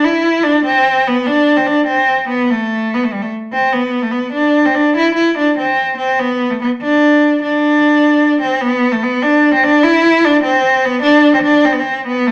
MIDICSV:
0, 0, Header, 1, 2, 480
1, 0, Start_track
1, 0, Tempo, 407609
1, 48, Time_signature, 6, 3, 24, 8
1, 14503, End_track
2, 0, Start_track
2, 0, Title_t, "Cello"
2, 0, Program_c, 0, 42
2, 51, Note_on_c, 0, 64, 90
2, 509, Note_on_c, 0, 62, 89
2, 527, Note_off_c, 0, 64, 0
2, 760, Note_off_c, 0, 62, 0
2, 766, Note_on_c, 0, 60, 97
2, 1264, Note_on_c, 0, 59, 87
2, 1282, Note_off_c, 0, 60, 0
2, 1489, Note_on_c, 0, 62, 95
2, 1507, Note_off_c, 0, 59, 0
2, 1844, Note_on_c, 0, 60, 80
2, 1862, Note_off_c, 0, 62, 0
2, 1960, Note_on_c, 0, 62, 89
2, 1978, Note_off_c, 0, 60, 0
2, 2188, Note_off_c, 0, 62, 0
2, 2195, Note_on_c, 0, 60, 87
2, 2651, Note_off_c, 0, 60, 0
2, 2687, Note_on_c, 0, 59, 91
2, 2942, Note_on_c, 0, 57, 88
2, 2959, Note_off_c, 0, 59, 0
2, 3460, Note_on_c, 0, 59, 77
2, 3478, Note_off_c, 0, 57, 0
2, 3575, Note_on_c, 0, 57, 72
2, 3592, Note_off_c, 0, 59, 0
2, 3684, Note_on_c, 0, 55, 77
2, 3701, Note_off_c, 0, 57, 0
2, 3790, Note_on_c, 0, 57, 68
2, 3808, Note_off_c, 0, 55, 0
2, 3897, Note_off_c, 0, 57, 0
2, 4153, Note_on_c, 0, 60, 87
2, 4385, Note_on_c, 0, 59, 78
2, 4402, Note_off_c, 0, 60, 0
2, 4733, Note_on_c, 0, 57, 80
2, 4750, Note_off_c, 0, 59, 0
2, 4841, Note_on_c, 0, 59, 75
2, 4859, Note_off_c, 0, 57, 0
2, 5084, Note_off_c, 0, 59, 0
2, 5091, Note_on_c, 0, 62, 84
2, 5482, Note_on_c, 0, 60, 81
2, 5500, Note_off_c, 0, 62, 0
2, 5590, Note_on_c, 0, 62, 91
2, 5608, Note_off_c, 0, 60, 0
2, 5826, Note_off_c, 0, 62, 0
2, 5847, Note_on_c, 0, 64, 88
2, 6052, Note_off_c, 0, 64, 0
2, 6059, Note_on_c, 0, 64, 84
2, 6283, Note_off_c, 0, 64, 0
2, 6333, Note_on_c, 0, 62, 79
2, 6542, Note_off_c, 0, 62, 0
2, 6570, Note_on_c, 0, 60, 80
2, 7003, Note_off_c, 0, 60, 0
2, 7031, Note_on_c, 0, 60, 80
2, 7291, Note_on_c, 0, 59, 87
2, 7309, Note_off_c, 0, 60, 0
2, 7653, Note_on_c, 0, 57, 76
2, 7670, Note_off_c, 0, 59, 0
2, 7757, Note_off_c, 0, 57, 0
2, 7784, Note_on_c, 0, 59, 80
2, 7882, Note_off_c, 0, 59, 0
2, 8028, Note_on_c, 0, 62, 87
2, 8678, Note_off_c, 0, 62, 0
2, 8737, Note_on_c, 0, 62, 90
2, 9871, Note_off_c, 0, 62, 0
2, 9905, Note_on_c, 0, 60, 84
2, 10140, Note_on_c, 0, 59, 97
2, 10158, Note_off_c, 0, 60, 0
2, 10501, Note_on_c, 0, 57, 87
2, 10519, Note_off_c, 0, 59, 0
2, 10638, Note_on_c, 0, 59, 91
2, 10656, Note_off_c, 0, 57, 0
2, 10857, Note_on_c, 0, 62, 93
2, 10875, Note_off_c, 0, 59, 0
2, 11218, Note_off_c, 0, 62, 0
2, 11230, Note_on_c, 0, 60, 87
2, 11347, Note_on_c, 0, 62, 104
2, 11365, Note_off_c, 0, 60, 0
2, 11578, Note_on_c, 0, 64, 107
2, 11596, Note_off_c, 0, 62, 0
2, 12067, Note_on_c, 0, 62, 100
2, 12084, Note_off_c, 0, 64, 0
2, 12276, Note_off_c, 0, 62, 0
2, 12283, Note_on_c, 0, 60, 95
2, 12776, Note_on_c, 0, 59, 103
2, 12794, Note_off_c, 0, 60, 0
2, 12973, Note_off_c, 0, 59, 0
2, 12980, Note_on_c, 0, 62, 104
2, 13331, Note_off_c, 0, 62, 0
2, 13355, Note_on_c, 0, 60, 81
2, 13413, Note_off_c, 0, 60, 0
2, 13453, Note_on_c, 0, 62, 98
2, 13715, Note_on_c, 0, 60, 86
2, 13733, Note_off_c, 0, 62, 0
2, 13810, Note_on_c, 0, 59, 77
2, 13828, Note_off_c, 0, 60, 0
2, 13884, Note_on_c, 0, 60, 82
2, 13902, Note_off_c, 0, 59, 0
2, 14199, Note_off_c, 0, 60, 0
2, 14206, Note_on_c, 0, 59, 94
2, 14445, Note_on_c, 0, 57, 82
2, 14462, Note_off_c, 0, 59, 0
2, 14503, Note_off_c, 0, 57, 0
2, 14503, End_track
0, 0, End_of_file